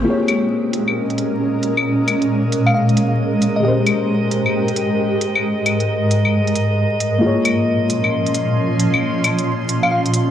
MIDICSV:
0, 0, Header, 1, 6, 480
1, 0, Start_track
1, 0, Tempo, 447761
1, 63, Time_signature, 4, 2, 24, 8
1, 11049, End_track
2, 0, Start_track
2, 0, Title_t, "FM electric piano"
2, 0, Program_c, 0, 5
2, 2857, Note_on_c, 0, 77, 78
2, 2912, Note_off_c, 0, 77, 0
2, 2942, Note_on_c, 0, 77, 64
2, 3041, Note_off_c, 0, 77, 0
2, 3820, Note_on_c, 0, 75, 73
2, 3874, Note_off_c, 0, 75, 0
2, 3910, Note_on_c, 0, 75, 67
2, 4005, Note_off_c, 0, 75, 0
2, 10537, Note_on_c, 0, 77, 80
2, 10592, Note_off_c, 0, 77, 0
2, 10627, Note_on_c, 0, 77, 66
2, 10723, Note_off_c, 0, 77, 0
2, 11049, End_track
3, 0, Start_track
3, 0, Title_t, "Synth texture"
3, 0, Program_c, 1, 99
3, 63, Note_on_c, 1, 75, 83
3, 11049, Note_off_c, 1, 75, 0
3, 11049, End_track
4, 0, Start_track
4, 0, Title_t, "Felt piano"
4, 0, Program_c, 2, 0
4, 0, Control_c, 2, 64, 127
4, 19, Note_on_c, 2, 58, 68
4, 48, Note_on_c, 2, 65, 61
4, 77, Control_c, 2, 64, 0
4, 77, Note_on_c, 2, 68, 61
4, 105, Note_on_c, 2, 73, 75
4, 269, Control_c, 2, 64, 127
4, 3858, Note_on_c, 2, 56, 71
4, 3860, Note_off_c, 2, 58, 0
4, 3875, Note_off_c, 2, 65, 0
4, 3888, Note_on_c, 2, 67, 64
4, 3889, Note_off_c, 2, 68, 0
4, 3903, Note_off_c, 2, 73, 0
4, 3917, Note_on_c, 2, 70, 65
4, 3918, Control_c, 2, 64, 0
4, 3945, Note_on_c, 2, 72, 76
4, 4116, Control_c, 2, 64, 127
4, 7700, Note_off_c, 2, 56, 0
4, 7700, Note_on_c, 2, 58, 69
4, 7715, Note_off_c, 2, 67, 0
4, 7729, Note_off_c, 2, 70, 0
4, 7729, Note_on_c, 2, 65, 65
4, 7743, Note_off_c, 2, 72, 0
4, 7755, Control_c, 2, 64, 0
4, 7756, Note_on_c, 2, 68, 67
4, 7786, Note_on_c, 2, 73, 76
4, 7914, Control_c, 2, 64, 127
4, 11049, Note_off_c, 2, 58, 0
4, 11049, Note_off_c, 2, 65, 0
4, 11049, Note_off_c, 2, 68, 0
4, 11049, Note_off_c, 2, 73, 0
4, 11049, End_track
5, 0, Start_track
5, 0, Title_t, "Ambient pad"
5, 0, Program_c, 3, 92
5, 60, Note_on_c, 3, 70, 81
5, 61, Note_on_c, 3, 46, 75
5, 62, Note_on_c, 3, 56, 68
5, 62, Note_on_c, 3, 61, 68
5, 3864, Note_off_c, 3, 46, 0
5, 3864, Note_off_c, 3, 61, 0
5, 3900, Note_on_c, 3, 44, 75
5, 3900, Note_on_c, 3, 67, 71
5, 5803, Note_off_c, 3, 67, 0
5, 7699, Note_off_c, 3, 70, 0
5, 7700, Note_off_c, 3, 56, 0
5, 7703, Note_off_c, 3, 44, 0
5, 7745, Note_on_c, 3, 61, 71
5, 7748, Note_on_c, 3, 46, 77
5, 7749, Note_on_c, 3, 53, 68
5, 7750, Note_on_c, 3, 84, 84
5, 11049, Note_off_c, 3, 46, 0
5, 11049, Note_off_c, 3, 53, 0
5, 11049, Note_off_c, 3, 61, 0
5, 11049, Note_off_c, 3, 84, 0
5, 11049, End_track
6, 0, Start_track
6, 0, Title_t, "Drums"
6, 302, Note_on_c, 9, 42, 52
6, 302, Note_on_c, 9, 75, 58
6, 410, Note_off_c, 9, 42, 0
6, 410, Note_off_c, 9, 75, 0
6, 786, Note_on_c, 9, 42, 52
6, 893, Note_off_c, 9, 42, 0
6, 940, Note_on_c, 9, 75, 47
6, 1047, Note_off_c, 9, 75, 0
6, 1180, Note_on_c, 9, 42, 29
6, 1266, Note_off_c, 9, 42, 0
6, 1266, Note_on_c, 9, 42, 51
6, 1373, Note_off_c, 9, 42, 0
6, 1745, Note_on_c, 9, 42, 51
6, 1853, Note_off_c, 9, 42, 0
6, 1900, Note_on_c, 9, 75, 60
6, 2008, Note_off_c, 9, 75, 0
6, 2226, Note_on_c, 9, 42, 50
6, 2226, Note_on_c, 9, 75, 56
6, 2333, Note_off_c, 9, 42, 0
6, 2333, Note_off_c, 9, 75, 0
6, 2377, Note_on_c, 9, 42, 29
6, 2485, Note_off_c, 9, 42, 0
6, 2704, Note_on_c, 9, 42, 52
6, 2812, Note_off_c, 9, 42, 0
6, 2858, Note_on_c, 9, 75, 46
6, 2965, Note_off_c, 9, 75, 0
6, 3099, Note_on_c, 9, 42, 30
6, 3183, Note_off_c, 9, 42, 0
6, 3183, Note_on_c, 9, 42, 52
6, 3291, Note_off_c, 9, 42, 0
6, 3664, Note_on_c, 9, 42, 52
6, 3771, Note_off_c, 9, 42, 0
6, 4143, Note_on_c, 9, 42, 49
6, 4143, Note_on_c, 9, 75, 56
6, 4250, Note_off_c, 9, 42, 0
6, 4250, Note_off_c, 9, 75, 0
6, 4624, Note_on_c, 9, 42, 49
6, 4731, Note_off_c, 9, 42, 0
6, 4779, Note_on_c, 9, 75, 44
6, 4886, Note_off_c, 9, 75, 0
6, 5020, Note_on_c, 9, 42, 30
6, 5106, Note_off_c, 9, 42, 0
6, 5106, Note_on_c, 9, 42, 51
6, 5214, Note_off_c, 9, 42, 0
6, 5588, Note_on_c, 9, 42, 49
6, 5695, Note_off_c, 9, 42, 0
6, 5740, Note_on_c, 9, 75, 57
6, 5847, Note_off_c, 9, 75, 0
6, 6067, Note_on_c, 9, 42, 47
6, 6067, Note_on_c, 9, 75, 54
6, 6174, Note_off_c, 9, 42, 0
6, 6174, Note_off_c, 9, 75, 0
6, 6219, Note_on_c, 9, 42, 26
6, 6326, Note_off_c, 9, 42, 0
6, 6549, Note_on_c, 9, 42, 50
6, 6656, Note_off_c, 9, 42, 0
6, 6700, Note_on_c, 9, 75, 46
6, 6807, Note_off_c, 9, 75, 0
6, 6941, Note_on_c, 9, 42, 28
6, 7027, Note_off_c, 9, 42, 0
6, 7027, Note_on_c, 9, 42, 50
6, 7134, Note_off_c, 9, 42, 0
6, 7508, Note_on_c, 9, 42, 49
6, 7615, Note_off_c, 9, 42, 0
6, 7987, Note_on_c, 9, 42, 46
6, 7987, Note_on_c, 9, 75, 56
6, 8094, Note_off_c, 9, 42, 0
6, 8094, Note_off_c, 9, 75, 0
6, 8466, Note_on_c, 9, 42, 46
6, 8574, Note_off_c, 9, 42, 0
6, 8619, Note_on_c, 9, 75, 45
6, 8726, Note_off_c, 9, 75, 0
6, 8860, Note_on_c, 9, 42, 27
6, 8946, Note_off_c, 9, 42, 0
6, 8946, Note_on_c, 9, 42, 48
6, 9053, Note_off_c, 9, 42, 0
6, 9428, Note_on_c, 9, 42, 46
6, 9536, Note_off_c, 9, 42, 0
6, 9581, Note_on_c, 9, 75, 53
6, 9688, Note_off_c, 9, 75, 0
6, 9907, Note_on_c, 9, 42, 47
6, 9907, Note_on_c, 9, 75, 58
6, 10014, Note_off_c, 9, 42, 0
6, 10014, Note_off_c, 9, 75, 0
6, 10061, Note_on_c, 9, 42, 28
6, 10168, Note_off_c, 9, 42, 0
6, 10387, Note_on_c, 9, 42, 49
6, 10495, Note_off_c, 9, 42, 0
6, 10540, Note_on_c, 9, 75, 46
6, 10648, Note_off_c, 9, 75, 0
6, 10781, Note_on_c, 9, 42, 29
6, 10866, Note_off_c, 9, 42, 0
6, 10866, Note_on_c, 9, 42, 49
6, 10973, Note_off_c, 9, 42, 0
6, 11049, End_track
0, 0, End_of_file